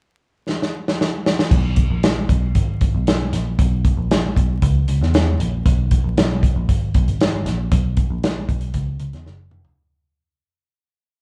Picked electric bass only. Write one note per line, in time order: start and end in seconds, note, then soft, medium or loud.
1.52 1.85 B1 loud
1.90 2.23 A#1 medium
2.29 2.51 B1 medium
2.55 2.77 G#1 medium
2.82 2.92 G#1 medium
2.94 3.27 B1 medium
3.33 3.55 A#1 medium
3.59 3.92 B1 medium
3.97 4.30 A#1 medium
4.37 4.59 B1 medium
4.62 4.84 C#2 loud
4.88 4.99 C#2 medium
5.01 5.34 E2 medium
5.40 5.62 A#1 medium
5.66 5.99 B1 loud
6.04 6.15 A#1 medium
6.17 6.50 B1 medium
6.56 6.67 A#1 medium
6.69 6.91 G#1 medium
6.95 7.06 B1 medium
7.08 7.41 G#1 medium
7.46 7.68 A#1 medium
7.71 8.04 B1 loud
8.10 8.43 A#1 medium
8.49 8.71 B1 medium
8.74 8.96 C#2 loud
9.00 9.11 C#2 medium
9.13 9.24 E2 medium
9.26 9.48 F#1 loud
9.51 9.73 F1 medium